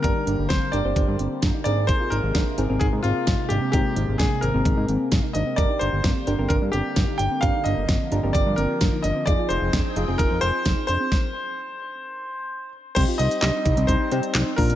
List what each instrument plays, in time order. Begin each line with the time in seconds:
Already playing: analog synth pad D3 G3 A#3
0.03 analog synth bass G1, synth arpeggio sound D4, synth keys D4 G4 A#4, grand piano A#4, kick, closed hi-hat
0.16 synth arpeggio sound D#4
0.27 analog synth bass G1, synth arpeggio sound D4, closed hi-hat
0.39 analog synth bass G1
0.49 analog synth bass G1, synth arpeggio sound C4, grand piano C5, kick, snare, closed hi-hat
0.72 analog synth bass G1, synth keys D4 G4 A#4, synth arpeggio sound D4, grand piano D5, closed hi-hat
0.85 analog synth bass G1, synth arpeggio sound C4, synth keys D4 G4 C5
0.96 analog synth bass G1, synth arpeggio sound D4, kick, closed hi-hat
1.08 analog synth bass G2
1.19 analog synth bass G1, synth arpeggio sound C4, closed hi-hat
1.42 analog synth bass G1, synth arpeggio sound D4, kick, snare, closed hi-hat
1.54 synth arpeggio sound D#4
1.64 analog synth bass G#1, analog synth pad C3 G#3 A#3, synth keys C4 G#4 A#4, synth arpeggio sound D4, grand piano D5, closed hi-hat
1.77 synth arpeggio sound C4
1.87 synth arpeggio sound D#4, grand piano C5, kick, closed hi-hat
2.00 synth arpeggio sound F4
2.10 analog synth bass G#1, synth arpeggio sound D#4, grand piano A#4, closed hi-hat
2.23 analog synth bass G#1
2.35 analog synth bass G#1, synth arpeggio sound D4, kick, snare, closed hi-hat
2.58 analog synth bass G#1, synth keys C4 G#4 A#4, synth arpeggio sound D#4, closed hi-hat
2.69 analog synth bass G#1, synth keys C4 G#4 A#4, synth arpeggio sound C4
2.79 analog synth bass G#1, synth arpeggio sound D#4, grand piano G#4, kick, closed hi-hat
2.93 analog synth bass G#2
3.03 analog synth bass G#1, synth arpeggio sound C4, grand piano F4, closed hi-hat
3.27 analog synth bass G#1, synth arpeggio sound D#4, kick, snare, closed hi-hat
3.39 synth arpeggio sound D#4
3.49 analog synth bass G#1, synth arpeggio sound D4, grand piano G4, closed hi-hat
3.62 synth arpeggio sound C4
3.72 analog synth bass G#1, synth keys G#3 C4 A#4, synth arpeggio sound D#4, grand piano G4, kick, closed hi-hat
3.85 synth arpeggio sound F4
3.96 analog synth bass G#1, synth arpeggio sound D#4, closed hi-hat
4.08 analog synth bass G#1
4.18 analog synth bass G#1, synth arpeggio sound D4, grand piano G#4, kick, snare, closed hi-hat
4.41 analog synth bass G#1, synth keys C4 G#4 A#4, synth arpeggio sound D#4, grand piano A#4, closed hi-hat
4.54 analog synth bass G#1, synth keys C4 G#4 A#4, synth arpeggio sound C4
4.65 analog synth bass G#1, synth arpeggio sound D#4, kick, closed hi-hat
4.77 analog synth bass G#2
4.88 analog synth bass G#1, synth arpeggio sound C4, closed hi-hat
5.12 analog synth bass G#1, synth arpeggio sound D#4, kick, snare, closed hi-hat
5.23 synth arpeggio sound D#4
5.33 analog synth bass G#1, synth arpeggio sound D4, grand piano D#5, closed hi-hat
5.46 synth arpeggio sound C4
5.56 analog synth bass G1, analog synth pad D3 G3, synth keys D4 G4 A#4, grand piano D5, kick, closed hi-hat
5.69 synth arpeggio sound D#4
5.79 analog synth bass G1, synth arpeggio sound D4, grand piano C5, closed hi-hat
5.93 analog synth bass G1
6.04 analog synth bass G1, synth arpeggio sound C4, kick, snare, closed hi-hat
6.27 analog synth bass G1, synth keys D4 G4 A#4, synth arpeggio sound D4, closed hi-hat
6.39 analog synth bass G1, synth arpeggio sound C4, synth keys D4 G4 A#4
6.49 analog synth bass G1, synth arpeggio sound D4, grand piano A#4, kick, closed hi-hat
6.62 analog synth bass G2
6.72 analog synth bass G1, synth arpeggio sound C4, grand piano G4, closed hi-hat
6.96 analog synth bass G1, synth arpeggio sound D4, kick, snare, closed hi-hat
7.08 synth arpeggio sound D#4
7.18 analog synth bass G1, synth arpeggio sound D4, grand piano G5, closed hi-hat
7.31 synth arpeggio sound C4
7.41 analog synth bass G1, analog synth pad F3, synth keys D4 G4 A#4, synth arpeggio sound D4, grand piano F5, kick, closed hi-hat
7.54 synth arpeggio sound D#4
7.64 analog synth bass G1, synth arpeggio sound D4, grand piano D#5, closed hi-hat
7.77 analog synth bass G1
7.89 analog synth bass G1, synth arpeggio sound C4, kick, snare, closed hi-hat
8.12 analog synth bass G1, synth arpeggio sound D4, synth keys D4 G4 A#4, closed hi-hat
8.23 analog synth bass G1, synth arpeggio sound C4, synth keys D4 G4 A#4
8.33 analog synth bass G1, synth arpeggio sound D4, grand piano D5, kick, closed hi-hat
8.46 analog synth bass G2
8.56 analog synth bass G1, synth arpeggio sound C4, grand piano A#4, closed hi-hat
8.81 analog synth bass G1, synth arpeggio sound D4, kick, snare, closed hi-hat
8.93 synth arpeggio sound D#4
9.02 analog synth bass G1, synth arpeggio sound D4, grand piano D#5, closed hi-hat
9.16 synth arpeggio sound C4
9.26 analog synth bass F1, analog synth pad C4 D#4 G#4 G5, synth arpeggio sound D#4, synth keys D#4 F4 G#4, grand piano D5, kick, closed hi-hat
9.39 synth arpeggio sound F4
9.49 analog synth bass F1, synth arpeggio sound D#4, grand piano C5, closed hi-hat
9.62 analog synth bass F1
9.73 analog synth bass F1, synth arpeggio sound D4, kick, snare, closed hi-hat
9.96 analog synth bass F1, synth arpeggio sound D#4, synth keys D#4 F4 G#4, closed hi-hat
10.08 analog synth bass F1, synth arpeggio sound C4, synth keys D#4 F4 G#4
10.18 analog synth bass F1, synth arpeggio sound D#4, grand piano A#4, kick, closed hi-hat
10.31 analog synth bass F2
10.41 analog synth bass F1, synth arpeggio sound C4, grand piano C5, closed hi-hat
10.65 analog synth bass F1, synth arpeggio sound D#4, kick, snare, closed hi-hat
10.77 synth arpeggio sound D#4
10.87 analog synth bass F1, synth arpeggio sound D4, grand piano C5, closed hi-hat
11.00 synth arpeggio sound C4
11.12 kick, snare
12.95 analog synth bass C2, analog synth pad G3 C4 D#4, synth keys C4 D#4 G4 C5, synth arpeggio sound D#4, grand piano C5, kick, closed hi-hat, crash
13.08 synth arpeggio sound F4
13.18 analog synth bass C2, synth arpeggio sound D#4, grand piano D#5, closed hi-hat
13.31 closed hi-hat
13.41 analog synth bass C2, synth arpeggio sound D4, grand piano D#5, snare, clap, closed hi-hat
13.65 analog synth bass C2, synth arpeggio sound D#4, kick, closed hi-hat
13.77 analog synth bass C2, synth arpeggio sound C4, closed hi-hat
13.87 analog synth bass C2, synth arpeggio sound D#4, grand piano C5, kick, closed hi-hat
14.12 analog synth bass C3, synth keys C4 D#4 G4 C5, synth arpeggio sound C4, closed hi-hat
14.23 closed hi-hat
14.35 analog synth bass C2, synth arpeggio sound D#4, snare, clap, closed hi-hat
14.46 synth arpeggio sound D#4
14.56 analog synth bass A#1, analog synth pad F3 A#3 D4, synth keys A#3 D4 F4 A#4, synth arpeggio sound D4, grand piano A#4, kick, open hi-hat
14.69 synth arpeggio sound C4, closed hi-hat